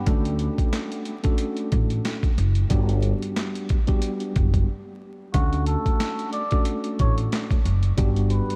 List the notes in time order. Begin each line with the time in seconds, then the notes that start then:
0.06 D2 A3 C#4 D4 F#4 A4, kick, closed hi-hat
0.25 closed hi-hat
0.39 closed hi-hat
0.58 kick, closed hi-hat
0.73 snare, clap, closed hi-hat
0.92 closed hi-hat
1.05 closed hi-hat
1.23 A3 C#4 D4 F#4 A4, kick, closed hi-hat
1.38 closed hi-hat
1.57 closed hi-hat
1.72 A1, kick, closed hi-hat
1.90 closed hi-hat
2.05 snare, clap, closed hi-hat
2.23 kick, closed hi-hat
2.38 F#1, closed hi-hat
2.55 closed hi-hat
2.69 G1 G3 B3 D4 F#4 G4, kick, closed hi-hat
2.89 closed hi-hat
3.03 closed hi-hat
3.22 closed hi-hat
3.36 snare, clap, closed hi-hat
3.55 closed hi-hat
3.69 kick, closed hi-hat
3.87 G3 B3 D4 F#4 G4, kick, closed hi-hat
4.02 closed hi-hat
4.20 closed hi-hat
4.36 F#1, kick, closed hi-hat
4.54 kick, closed hi-hat
5.34 D2 A3 C#4 D4 F#4 A4, kick, closed hi-hat
5.53 closed hi-hat
5.66 A4, closed hi-hat
5.86 kick, closed hi-hat
6.00 snare, clap, closed hi-hat
6.19 closed hi-hat
6.33 D5, closed hi-hat
6.51 A3 C#4 D4 F#4 A4, kick, closed hi-hat
6.65 closed hi-hat
6.84 closed hi-hat
6.99 A1 C#5, kick, closed hi-hat
7.18 closed hi-hat
7.32 snare, clap, closed hi-hat
7.51 kick, closed hi-hat
7.65 F#1, closed hi-hat
7.83 closed hi-hat
7.97 G1 G3 B3 D4 F#4 G4, kick, closed hi-hat
8.16 closed hi-hat
8.30 B4, closed hi-hat
8.50 closed hi-hat